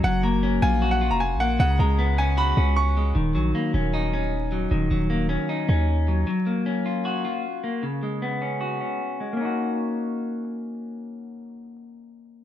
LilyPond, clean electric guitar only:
\new Staff \with { instrumentName = "Clean electric guitar" } { \time 4/4 \key ees \minor \tempo 4 = 154 ges8 bes8 des'8 f'8 ges'8 f'4 bes8 | des8 aes8 ces'8 des'8 ges'8 des'4 aes8 | ees8 ges8 bes8 des'8 ees'8 des'4 ges8 | ees8 ges8 bes8 des'8 ees'8 des'4 ges8 |
ges8 bes8 des'8 f'8 ges'8 f'4 bes8 | des8 aes8 ces'8 des'8 ges'8 des'4 aes8 | <bes des' ees' ges'>1~ | <bes des' ees' ges'>1 | }